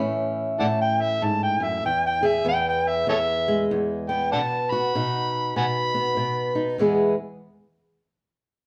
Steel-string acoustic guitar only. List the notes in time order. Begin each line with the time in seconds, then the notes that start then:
Already playing: E3 A3 E4
0.00 A2 C#4
0.61 A2
1.22 G#2
1.60 F#2
1.85 E2
2.23 G#4
2.45 E2 B3
3.07 E2
3.48 G#3
3.71 E2
4.09 B3
4.33 B2
4.72 F#4
4.95 B2 D#4
5.56 B2
5.94 B3
6.17 B2
6.55 D#4
6.78 E2 E3 G#3 B3 G#4